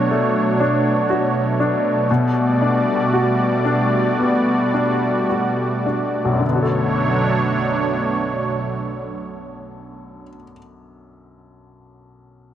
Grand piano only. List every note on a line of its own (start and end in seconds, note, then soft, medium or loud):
0.00 2.05 B2 medium
0.00 0.60 D4 soft
0.00 1.05 F#4 medium
0.11 2.05 A3 soft
0.60 1.58 D4 soft
1.10 2.07 F#4 medium
1.60 2.08 D4 soft
2.11 6.41 B2 medium
2.62 3.64 D4 soft
3.13 5.26 F#4 soft
3.65 4.72 D4 soft
4.20 6.41 B3 soft
4.74 5.85 D4 soft
5.29 6.41 F#4 soft
5.86 6.42 D4 soft
6.25 10.21 B1 soft
6.33 10.28 F#2 soft
6.40 10.36 D3 soft
6.47 10.43 B3 soft
6.55 10.51 F#4 soft
6.63 10.58 A4 soft